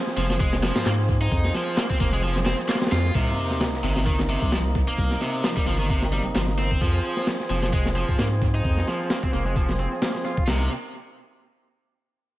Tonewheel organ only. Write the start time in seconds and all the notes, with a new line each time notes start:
Already playing: F3 C4 G#4
3.15 C3 A#3 D#4
6.81 F3 C4 G#4
10.47 C3 A#3 D#4